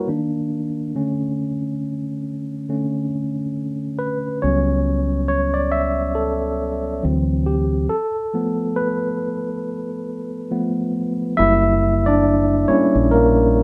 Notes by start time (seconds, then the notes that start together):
0.08 D#3 A#3 D4
0.95 D3 A3 C#4
2.69 D3 A3 C#4
3.99 B4
4.42 C#2 F#3 G3 B3 C#4 C#5
5.28 C#5
5.54 D5
5.72 E5
6.15 A4
7.03 D2 E3 F#3 C4
7.46 G4
7.89 A4
8.34 F3 A3 B3
8.76 B4
10.51 F3 A3 B3
11.37 F#1 G3 A#3 E4 E5
12.06 D4 D5
12.68 G3 A#3 C#4 E4 C#5, muted fingered electric bass stroke
12.95 A#1
13.11 A#3 A#4